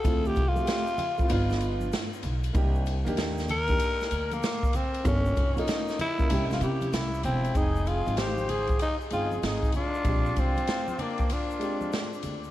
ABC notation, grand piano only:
X:1
M:4/4
L:1/16
Q:"Swing 16ths" 1/4=96
K:Fdor
V:1 name="Grand piano"
[=A,C=EF]2 z [A,C_G=G=e]3 z [A,CEF] [=B,D_EF]6 z2 | [B,DEG]2 z [B,DEG]3 z [B,DEG]6 z3 | [B,_DF=A]2 z [B,DFA]3 z [B,DFB] [B,D=EG]6 z2 | [A,CEg]6 z4 [A,CEg]4- [A,CEg] z |
[A,CDG]6 z4 [A,CDG]4- [A,CDG] z |]